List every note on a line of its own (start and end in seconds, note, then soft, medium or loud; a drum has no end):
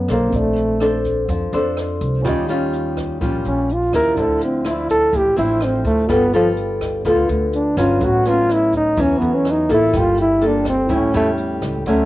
0.00 0.30 F#2 medium
0.00 0.10 B3 medium
0.00 0.28 A4 soft
0.00 0.30 F5 medium
0.08 0.31 B1 medium
0.08 0.39 A#3 medium
0.08 0.77 D4 medium
0.08 0.78 A4 medium
0.08 0.78 C5 medium
0.08 kick soft
0.08 cross-stick medium
0.08 closed hi-hat soft
0.08 shaker medium
0.29 1.25 A#1 medium
0.29 2.20 C4 medium
0.29 2.20 A4 soft
0.29 kick medium
0.29 closed hi-hat medium
0.29 shaker medium
0.36 1.07 A3 medium
0.36 2.23 D5 medium
0.56 closed hi-hat soft
0.56 shaker soft
0.80 1.29 D4 medium
0.80 1.29 A4 medium
0.80 1.29 C5 medium
0.80 cross-stick medium
0.80 closed hi-hat soft
1.05 kick soft
1.05 closed hi-hat soft
1.05 shaker medium
1.29 1.51 F2 medium
1.29 2.23 F3 medium
1.29 kick medium
1.29 closed hi-hat medium
1.29 shaker medium
1.53 1.98 F2 medium
1.53 2.24 D4 medium
1.53 2.24 A4 medium
1.53 2.24 C5 medium
1.53 closed hi-hat soft
1.53 shaker soft
1.77 cross-stick medium
1.77 closed hi-hat soft
2.01 2.23 C2 medium
2.01 kick soft
2.01 closed hi-hat soft
2.01 shaker medium
2.22 3.17 D#2 medium
2.22 3.19 D#3 medium
2.22 2.45 G3 medium
2.22 3.89 C#4 medium
2.22 2.45 C#4 medium
2.22 3.89 F4 medium
2.22 2.46 F4 medium
2.22 3.91 G4 medium
2.22 kick medium
2.22 cross-stick medium
2.22 closed hi-hat medium
2.22 shaker medium
2.28 3.92 D#5 medium
2.49 3.17 G3 medium
2.49 3.18 C#4 medium
2.49 3.18 F4 medium
2.49 closed hi-hat soft
2.49 shaker soft
2.73 closed hi-hat soft
2.73 shaker medium
2.97 kick soft
2.97 cross-stick medium
2.97 closed hi-hat soft
2.97 shaker medium
3.21 3.44 A#1 loud
3.21 4.15 A#2 medium
3.21 3.69 G3 medium
3.21 3.69 C#4 medium
3.21 3.70 F4 medium
3.21 kick medium
3.21 closed hi-hat medium
3.21 shaker medium
3.45 3.90 A#1 loud
3.45 3.74 C#4 medium
3.45 closed hi-hat soft
3.45 shaker soft
3.69 3.95 F4 medium
3.69 closed hi-hat soft
3.92 4.16 D#2 medium
3.92 4.62 F3 medium
3.92 4.62 C4 medium
3.92 4.17 C#4 soft
3.92 4.62 E4 medium
3.92 4.17 F4 soft
3.92 4.18 G4 soft
3.92 4.21 A#4 loud
3.92 4.18 D#5 soft
3.92 kick soft
3.92 cross-stick medium
3.92 closed hi-hat soft
3.92 shaker medium
4.15 5.09 D2 medium
4.15 5.11 D3 medium
4.15 5.34 D4 medium
4.15 kick medium
4.15 closed hi-hat medium
4.15 shaker medium
4.19 4.43 A4 medium
4.19 5.36 C5 soft
4.19 5.37 E5 medium
4.41 4.70 C4 medium
4.41 closed hi-hat soft
4.41 shaker soft
4.65 5.33 F3 medium
4.65 5.34 C4 medium
4.65 5.34 E4 medium
4.65 4.90 E4 medium
4.65 cross-stick medium
4.65 closed hi-hat soft
4.65 shaker medium
4.89 5.18 A4 loud
4.89 kick soft
4.89 closed hi-hat soft
4.89 shaker medium
5.13 5.36 A1 medium
5.13 6.07 A2 medium
5.13 5.38 G4 medium
5.13 kick medium
5.13 closed hi-hat medium
5.13 shaker medium
5.36 5.83 A1 medium
5.36 6.07 F3 medium
5.36 6.07 C4 medium
5.36 6.09 D4 soft
5.36 6.07 E4 medium
5.36 5.65 E4 medium
5.36 6.10 C5 soft
5.36 6.11 E5 soft
5.36 closed hi-hat soft
5.36 shaker soft
5.61 5.86 C4 medium
5.61 cross-stick medium
5.61 closed hi-hat soft
5.61 shaker medium
5.85 6.07 D2 medium
5.85 6.13 A3 medium
5.85 kick soft
5.85 closed hi-hat soft
5.85 shaker medium
6.07 7.01 G1 medium
6.07 7.03 G3 medium
6.07 6.23 B3 medium
6.07 7.97 F4 medium
6.07 6.24 F4 medium
6.07 7.98 A4 soft
6.07 6.24 A4 medium
6.07 7.99 B4 soft
6.07 kick medium
6.07 cross-stick medium
6.07 closed hi-hat medium
6.07 shaker medium
6.12 6.35 B3 medium
6.12 8.00 G5 medium
6.33 6.49 F3 medium
6.33 7.02 B3 medium
6.33 7.02 F4 medium
6.33 7.02 A4 medium
6.33 closed hi-hat soft
6.33 shaker soft
6.57 closed hi-hat soft
6.81 kick soft
6.81 cross-stick medium
6.81 closed hi-hat soft
6.81 shaker medium
7.05 7.28 D2 loud
7.05 7.99 D3 medium
7.05 7.74 B3 medium
7.05 7.74 F4 medium
7.05 7.30 F4 medium
7.05 7.74 A4 medium
7.05 kick medium
7.05 closed hi-hat medium
7.05 shaker medium
7.29 7.74 D2 loud
7.29 7.47 A3 medium
7.29 closed hi-hat soft
7.29 shaker soft
7.53 7.78 D4 medium
7.53 closed hi-hat soft
7.53 shaker medium
7.77 8.00 G1 loud
7.77 8.25 F#3 medium
7.77 8.25 B3 medium
7.77 8.25 C#4 medium
7.77 8.06 F4 medium
7.77 kick soft
7.77 cross-stick medium
7.77 closed hi-hat soft
7.77 shaker medium
7.99 8.93 A1 loud
7.99 8.95 A2 medium
7.99 9.18 C#4 medium
7.99 9.19 A4 soft
7.99 kick medium
7.99 closed hi-hat medium
7.99 shaker medium
8.03 8.29 F#4 loud
8.03 9.20 B4 medium
8.03 9.21 F#5 medium
8.25 8.94 F#3 medium
8.25 8.94 B3 medium
8.25 8.94 C#4 medium
8.25 8.55 F4 loud
8.25 closed hi-hat soft
8.25 shaker soft
8.49 cross-stick medium
8.49 closed hi-hat soft
8.53 8.76 E4 medium
8.73 9.03 D#4 medium
8.73 kick soft
8.73 closed hi-hat soft
8.73 shaker medium
8.97 9.20 E2 medium
8.97 9.91 E3 medium
8.97 9.66 F#3 medium
8.97 9.66 B3 medium
8.97 9.66 C#4 medium
8.97 kick medium
8.97 closed hi-hat medium
8.97 shaker medium
9.01 9.20 C#4 medium
9.18 9.66 E2 medium
9.18 9.36 B3 medium
9.18 9.93 C#4 soft
9.18 9.91 A4 soft
9.18 9.94 B4 soft
9.18 closed hi-hat soft
9.18 shaker soft
9.23 9.95 F#5 soft
9.34 9.53 C#4 medium
9.45 cross-stick medium
9.45 closed hi-hat soft
9.51 9.73 D#4 medium
9.69 9.92 A1 loud
9.69 10.38 A#3 medium
9.69 10.38 F4 medium
9.69 10.38 A4 medium
9.69 kick soft
9.69 closed hi-hat soft
9.69 shaker medium
9.74 10.00 E4 loud
9.91 10.86 G1 loud
9.91 10.87 G3 medium
9.91 10.86 F4 soft
9.91 10.87 A4 soft
9.91 kick medium
9.91 cross-stick medium
9.91 closed hi-hat medium
9.91 shaker medium
9.97 10.20 F4 loud
9.97 10.90 G5 medium
10.17 10.48 E4 loud
10.17 closed hi-hat soft
10.17 shaker soft
10.41 10.74 A#3 medium
10.41 10.74 F4 medium
10.41 10.74 A4 medium
10.41 closed hi-hat soft
10.47 10.68 D4 medium
10.65 kick soft
10.65 cross-stick medium
10.65 closed hi-hat soft
10.65 shaker medium
10.69 10.95 C4 medium
10.87 11.12 A1 medium
10.87 11.83 A2 medium
10.87 11.10 G3 medium
10.87 11.10 C#4 medium
10.87 11.82 E4 medium
10.87 11.10 E4 medium
10.87 11.84 A4 soft
10.87 kick medium
10.87 closed hi-hat medium
10.87 shaker medium
10.91 11.16 C#4 medium
10.91 11.85 C#5 medium
10.91 11.86 G5 medium
11.13 11.59 E2 loud
11.13 11.84 G3 medium
11.13 11.30 A3 medium
11.13 11.84 C#4 medium
11.13 11.84 E4 medium
11.13 closed hi-hat soft
11.13 shaker soft
11.38 closed hi-hat medium
11.62 11.84 C#2 loud
11.62 kick soft
11.62 cross-stick medium
11.62 closed hi-hat soft
11.62 shaker medium
11.85 12.05 D2 loud
11.85 12.05 D3 medium
11.85 12.05 F#3 medium
11.85 12.05 A3 medium
11.85 12.05 C#4 medium
11.85 12.05 A4 soft
11.85 12.05 C#5 soft
11.85 12.05 F#5 medium
11.85 kick medium
11.85 closed hi-hat medium
11.85 shaker medium